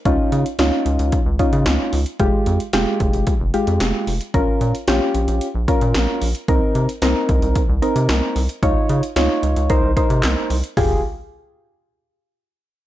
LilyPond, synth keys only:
\new Staff \with { instrumentName = "Synth keys" } { \time 4/4 \key f \minor \tempo 4 = 112 <des' ees' f'>8. r16 <des' ees' f'>4 r8 <des' ees' f'>4 r8 | <aes f' g'>8. r16 <aes f' g'>4 r8 <aes f' g'>4 r8 | <des' f' bes'>8. r16 <des' f' g'>4 r8 <des' f' bes'>4 r8 | <c' ees' bes'>8. r16 <c' ees' bes'>4 r8 <c' ees' bes'>4 r8 |
<ees' f' des''>8. r16 <ees' f' des''>4 <ees' bes' c''>8 <ees' bes' c''>4 r8 | <f' g' aes'>8 r2. r8 | }